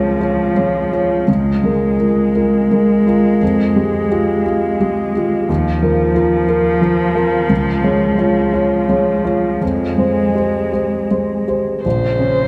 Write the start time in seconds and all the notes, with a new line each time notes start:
Already playing: C#2 F3 G#3 F4 C#5
0.21 F4 C#5
0.57 G#3 C#5
0.93 F4 C#5
1.28 C#2 G#3
1.64 G#3 A#4
1.99 F4 A#4
2.35 F4 A#4
2.71 G#3 A#4
3.06 F4 A#4
3.42 F2
3.76 G#3 G4
4.11 F4 G4
4.46 F4 G4
4.80 G#3 G4
5.17 F4 G4
5.49 D#2 F3
5.82 F3 A#4
6.15 F4 A#4
6.48 F4 A#4
6.81 F3 A#4
7.15 F4 A#4
7.49 C#2
7.84 G#3 C#5
8.19 F4 C#5
8.53 F4 C#5
8.89 G#3 C#5
9.24 F4 C#5
9.61 F2 G#3
9.98 G#3 C5
10.35 G4 C5
10.72 G4 C5
11.11 G#3 C5
11.48 G4 C5
11.84 A#1 C#3 C5
12.19 C#4